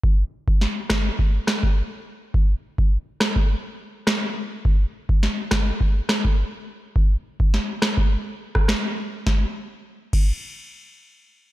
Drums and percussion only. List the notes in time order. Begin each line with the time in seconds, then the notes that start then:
0.04 kick
0.48 kick
0.61 snare
0.90 kick, cross-stick, snare
1.19 kick
1.47 cross-stick, snare
1.63 kick
2.34 kick
2.78 kick
3.20 cross-stick, snare
3.36 kick
4.07 cross-stick, snare
4.65 kick
5.09 kick
5.23 snare
5.51 kick, cross-stick, snare
5.81 kick
6.09 cross-stick, snare
6.25 kick
6.96 kick
7.40 kick
7.54 snare
7.82 cross-stick, snare
7.97 kick
8.55 kick, cross-stick
8.68 cross-stick, snare
9.27 kick, snare
10.13 kick, crash